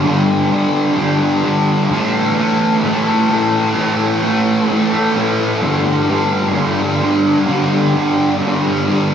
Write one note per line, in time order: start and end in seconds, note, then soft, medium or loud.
0.04 0.49 G2 medium
0.04 0.51 D3 medium
0.04 0.52 G3 medium
0.50 0.95 G2 medium
0.50 0.97 D3 medium
0.50 0.98 G3 medium
0.96 1.43 G2 medium
0.96 1.21 D3 medium
0.96 1.18 G3 medium
1.19 1.44 D3 medium
1.19 1.45 G3 medium
1.44 1.90 G2 medium
1.44 1.89 D3 medium
1.44 1.90 G3 medium
1.90 2.35 A2 medium
1.90 2.37 E3 medium
1.90 2.39 A3 loud
2.36 2.82 A2 medium
2.36 2.84 E3 medium
2.36 2.86 A3 medium
2.83 3.28 A2 medium
2.83 3.09 E3 medium
2.83 3.05 A3 medium
3.07 3.30 E3 medium
3.07 3.31 A3 medium
3.29 3.74 A2 medium
3.29 3.76 E3 medium
3.29 3.78 A3 medium
3.75 4.22 A2 medium
3.75 4.23 E3 medium
3.75 4.25 A3 loud
4.23 4.67 A2 medium
4.23 4.69 E3 medium
4.23 4.70 A3 medium
4.69 5.15 A2 medium
4.69 4.93 E3 medium
4.69 4.91 A3 medium
4.92 5.16 E3 medium
4.92 5.17 A3 medium
5.16 5.62 A2 medium
5.16 5.62 E3 medium
5.16 5.63 A3 medium
5.61 6.08 G2 medium
5.61 6.09 D3 medium
5.61 6.11 G3 medium
6.08 6.53 G2 medium
6.08 6.55 D3 medium
6.08 6.56 G3 medium
6.54 7.00 G2 medium
6.54 6.81 D3 medium
6.54 6.77 G3 medium
6.79 7.02 D3 medium
6.79 7.04 G3 medium
7.01 7.47 G2 medium
7.01 7.49 D3 medium
7.01 7.50 G3 medium
7.48 7.94 G2 medium
7.48 7.96 D3 medium
7.48 7.97 G3 medium
7.95 8.41 G2 medium
7.95 8.43 D3 medium
7.95 8.44 G3 medium
8.42 8.87 G2 medium
8.42 8.68 D3 medium
8.42 8.65 G3 medium
8.66 8.89 D3 medium
8.66 8.90 G3 medium
8.88 9.14 G2 medium
8.88 9.14 D3 medium
8.88 9.14 G3 medium